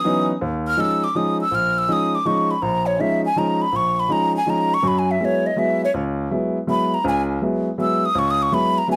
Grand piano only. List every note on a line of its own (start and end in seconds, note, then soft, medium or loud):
0.04 0.30 E3 medium
0.04 0.30 F#3 medium
0.04 0.30 B3 medium
0.04 0.30 C#4 medium
0.04 0.31 D#4 medium
0.41 0.73 D#2 medium
0.77 1.03 F3 medium
0.77 1.03 G#3 medium
0.77 1.04 C#4 medium
0.77 1.04 D#4 medium
1.15 1.41 F3 medium
1.15 1.41 G#3 medium
1.15 1.41 C#4 medium
1.15 1.41 D#4 medium
1.51 1.84 A#1 medium
1.88 2.14 F3 medium
1.88 2.15 G#3 medium
1.88 2.14 C#4 medium
1.88 2.14 D#4 medium
2.25 2.51 F3 medium
2.25 2.51 G#3 medium
2.25 2.51 C#4 medium
2.25 2.52 D#4 medium
2.62 2.94 A#1 medium
2.99 3.25 F3 medium
2.99 3.25 G#3 medium
2.99 3.25 C#4 medium
2.99 3.25 D#4 medium
3.36 3.62 F3 medium
3.36 3.62 G#3 medium
3.36 3.62 C#4 medium
3.36 3.62 D#4 medium
3.72 4.05 A#1 medium
4.09 4.35 F3 medium
4.09 4.35 G#3 medium
4.09 4.35 C#4 medium
4.09 4.35 D#4 medium
4.46 4.72 F3 medium
4.46 4.72 G#3 medium
4.46 4.72 C#4 medium
4.46 4.72 D#4 medium
4.83 5.15 F#2 medium
4.83 5.15 F#3 medium
5.20 5.46 F#3 medium
5.20 5.46 G#3 medium
5.20 5.46 B3 medium
5.20 5.46 E4 medium
5.56 5.82 F#3 medium
5.56 5.82 G#3 medium
5.56 5.83 B3 medium
5.56 5.83 E4 medium
5.94 6.26 C#2 medium
6.31 6.56 F#3 medium
6.31 6.57 G#3 medium
6.31 6.57 B3 medium
6.31 6.56 E4 medium
6.67 6.93 F#3 medium
6.67 6.93 G#3 medium
6.67 6.93 B3 medium
6.67 6.93 E4 medium
7.04 7.36 C#2 medium
7.04 7.36 C#3 medium
7.41 7.67 F#3 medium
7.41 7.67 G#3 medium
7.41 7.67 B3 medium
7.41 7.67 E4 medium
7.78 8.04 F#3 medium
7.78 8.03 G#3 medium
7.78 8.03 B3 medium
7.78 8.04 E4 medium
8.15 8.47 C#2 medium
8.52 8.77 F#3 medium
8.52 8.77 G#3 medium
8.52 8.77 B3 medium
8.52 8.77 E4 medium
8.88 8.96 F#3 medium
8.88 8.96 G#3 medium
8.88 8.96 B3 medium
8.88 8.96 E4 medium